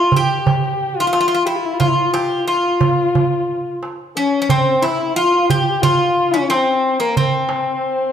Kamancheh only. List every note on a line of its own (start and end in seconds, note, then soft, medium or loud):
0.00 0.14 F4 medium
0.14 0.98 G4 medium
0.97 1.47 F4 medium
1.45 1.57 G4 medium
1.55 1.67 F4 medium
1.65 1.75 E4 medium
1.74 1.82 F4 medium
1.82 1.89 F4 medium
1.88 1.96 E4 medium
1.95 2.47 F4 medium
2.48 3.78 F4 medium
4.17 4.51 C#4 medium
4.49 4.84 C4 medium
4.82 5.16 E4 medium
5.16 5.50 F4 medium
5.49 5.83 G4 medium
5.82 6.33 F4 medium
6.32 6.51 C#4 medium
6.50 7.01 C4 medium
7.00 7.19 A#3 medium
7.17 8.12 C4 medium